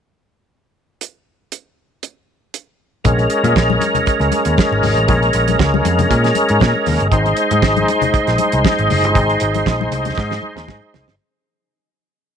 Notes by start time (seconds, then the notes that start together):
1.01 closed hi-hat
1.52 closed hi-hat
2.03 closed hi-hat
2.54 closed hi-hat
3.04 A#1 G#3 C#4 A#4, kick, closed hi-hat, muted conga, low conga
3.18 closed hi-hat, muted conga
3.30 closed hi-hat
3.44 A#2, closed hi-hat, high conga
3.56 A#1, kick, snare, muted conga
3.70 muted conga, high conga
3.81 closed hi-hat, high conga
3.95 closed hi-hat, low conga
4.06 kick, closed hi-hat, muted conga
4.20 C#2, closed hi-hat, muted conga
4.31 closed hi-hat, high conga
4.45 D#2, closed hi-hat
4.58 kick, snare, high conga
4.72 G#1, muted conga
4.83 G#1, open hi-hat, high conga, low conga
4.96 A1, closed hi-hat
5.08 A#1, kick, closed hi-hat, low conga
5.22 closed hi-hat, muted conga
5.33 A#1, closed hi-hat
5.48 closed hi-hat, high conga
5.59 C#2, kick, snare, muted conga
5.74 muted conga, high conga
5.85 F2, closed hi-hat, high conga
5.99 closed hi-hat, low conga
6.11 A#2, kick, closed hi-hat, muted conga
6.24 snare, closed hi-hat, muted conga
6.35 closed hi-hat, high conga
6.49 G#2, closed hi-hat
6.60 A#2, kick, snare, high conga
6.75 muted conga
6.86 D#2, open hi-hat, high conga, low conga
7.00 G1, closed hi-hat
7.12 G#1 D#4 C5, kick, closed hi-hat, low conga
7.26 closed hi-hat, muted conga
7.37 closed hi-hat
7.51 G#2, closed hi-hat, high conga
7.62 G#1, kick, snare, muted conga
7.76 closed hi-hat, muted conga, high conga
7.88 closed hi-hat, high conga
8.02 closed hi-hat, low conga
8.14 kick, closed hi-hat
8.27 A#1, snare, closed hi-hat
8.38 closed hi-hat, high conga
8.52 C2, closed hi-hat
8.65 kick, snare, muted conga, high conga
8.78 G#1, closed hi-hat
8.90 F#1, open hi-hat, high conga, low conga
9.04 G1, closed hi-hat
9.15 G#1, kick, closed hi-hat, muted conga, low conga
9.30 closed hi-hat
9.40 G#1, closed hi-hat
9.54 closed hi-hat, high conga
9.66 A#1, kick, snare, muted conga
9.81 muted conga, high conga
9.91 C2, closed hi-hat, high conga
10.05 closed hi-hat, low conga
10.18 G#2, kick, snare
10.30 snare, muted conga
10.42 high conga
10.56 D#2, snare
10.68 G#2, kick, snare, muted conga, high conga
10.82 muted conga
10.94 C2, snare, high conga, low conga
11.07 G1, snare